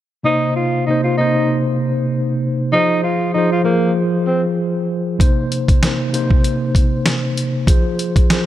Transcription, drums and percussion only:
5.20 kick, closed hi-hat
5.52 closed hi-hat
5.68 kick, closed hi-hat
5.83 snare, closed hi-hat
6.14 closed hi-hat
6.31 kick
6.44 closed hi-hat
6.75 kick, closed hi-hat
7.06 snare, closed hi-hat
7.37 closed hi-hat
7.67 kick, closed hi-hat
7.99 closed hi-hat
8.16 kick, closed hi-hat
8.30 snare, closed hi-hat

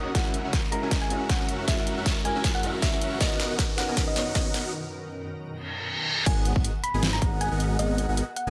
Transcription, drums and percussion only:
0.15 kick, snare, closed hi-hat
0.34 closed hi-hat
0.53 kick, snare, closed hi-hat
0.72 closed hi-hat
0.91 kick, snare, closed hi-hat
1.10 closed hi-hat
1.29 kick, snare, closed hi-hat
1.49 closed hi-hat
1.68 kick, snare, closed hi-hat
1.87 closed hi-hat
2.06 kick, snare, closed hi-hat
2.25 closed hi-hat
2.44 kick, snare, closed hi-hat
2.63 closed hi-hat
2.82 kick, snare, closed hi-hat
3.01 closed hi-hat
3.21 kick, snare, closed hi-hat
3.40 snare, closed hi-hat
3.59 kick, snare, closed hi-hat
3.78 snare, closed hi-hat
3.97 kick, snare, closed hi-hat
4.16 snare, closed hi-hat
4.35 kick, snare, closed hi-hat
4.54 snare, closed hi-hat
6.26 kick, closed hi-hat, crash
6.45 closed hi-hat
6.56 kick
6.64 closed hi-hat
6.84 closed hi-hat
7.03 snare, closed hi-hat
7.22 kick, closed hi-hat
7.41 closed hi-hat
7.60 closed hi-hat
7.79 closed hi-hat
7.98 closed hi-hat
8.17 closed hi-hat
8.36 closed hi-hat

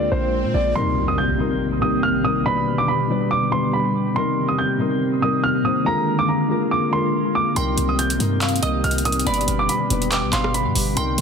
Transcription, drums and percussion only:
7.56 closed hi-hat
7.78 closed hi-hat
7.99 closed hi-hat
8.10 closed hi-hat
8.20 closed hi-hat
8.41 clap, closed hi-hat
8.49 closed hi-hat
8.56 closed hi-hat
8.63 closed hi-hat
8.84 closed hi-hat
8.91 closed hi-hat
8.98 closed hi-hat
9.05 closed hi-hat
9.12 closed hi-hat
9.19 closed hi-hat
9.27 closed hi-hat
9.34 closed hi-hat
9.41 closed hi-hat
9.48 closed hi-hat
9.69 closed hi-hat
9.90 closed hi-hat
10.02 closed hi-hat
10.12 clap, closed hi-hat
10.33 clap, closed hi-hat
10.44 cross-stick
10.54 closed hi-hat
10.75 open hi-hat
10.97 closed hi-hat
11.18 closed hi-hat

